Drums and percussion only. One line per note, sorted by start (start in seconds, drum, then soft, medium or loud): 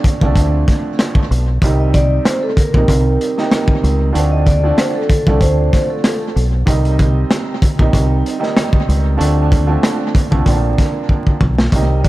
0.04 kick loud
0.04 closed hi-hat medium
0.21 kick loud
0.36 kick loud
0.36 closed hi-hat medium
0.68 kick loud
0.68 snare soft
0.68 closed hi-hat medium
0.99 cross-stick loud
0.99 snare loud
0.99 closed hi-hat medium
1.15 kick medium
1.32 closed hi-hat medium
1.62 kick loud
1.62 closed hi-hat medium
1.94 kick loud
1.94 closed hi-hat medium
2.25 cross-stick medium
2.25 snare loud
2.25 closed hi-hat loud
2.57 kick medium
2.57 closed hi-hat medium
2.74 kick loud
2.88 kick loud
2.88 closed hi-hat medium
3.21 closed hi-hat medium
3.38 snare soft
3.51 cross-stick loud
3.51 snare loud
3.51 closed hi-hat medium
3.68 kick loud
3.84 closed hi-hat medium
4.15 closed hi-hat medium
4.47 kick loud
4.47 closed hi-hat medium
4.78 cross-stick medium
4.78 snare loud
4.78 closed hi-hat medium
5.10 kick loud
5.10 closed hi-hat medium
5.27 kick loud
5.41 kick loud
5.41 closed hi-hat medium
5.73 kick medium
5.73 snare soft
5.73 closed hi-hat medium
6.04 cross-stick loud
6.04 snare loud
6.04 closed hi-hat medium
6.37 closed hi-hat medium
6.67 kick loud
6.67 closed hi-hat medium
6.85 closed hi-hat medium
6.99 kick loud
6.99 closed hi-hat medium
7.31 cross-stick loud
7.31 snare loud
7.31 closed hi-hat medium
7.62 kick loud
7.62 closed hi-hat medium
7.79 kick loud
7.93 kick loud
7.93 closed hi-hat medium
8.26 closed hi-hat medium
8.43 snare soft
8.57 cross-stick loud
8.57 snare loud
8.57 closed hi-hat medium
8.73 kick loud
8.89 closed hi-hat medium
9.21 closed hi-hat medium
9.52 kick loud
9.52 closed hi-hat medium
9.83 cross-stick medium
9.83 snare loud
9.83 closed hi-hat loud
10.15 kick medium
10.15 closed hi-hat medium
10.32 kick loud
10.46 kick loud
10.46 closed hi-hat medium
10.78 kick medium
10.78 snare soft
10.78 closed hi-hat medium
11.09 kick medium
11.27 kick medium
11.41 kick loud
11.59 snare loud
11.72 kick loud
11.72 closed hi-hat medium
12.05 kick medium
12.05 closed hi-hat medium